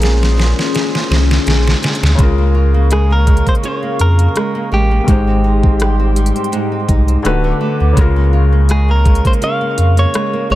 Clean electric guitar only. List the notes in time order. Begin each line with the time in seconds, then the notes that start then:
Already playing: A#4
2.93 G#4
3.12 A#4
3.49 C5
3.65 C#5
4.01 A#4
4.74 G4
8.71 G#4
8.91 A#4
9.27 C5
9.44 F5
9.99 C#5
10.52 D#5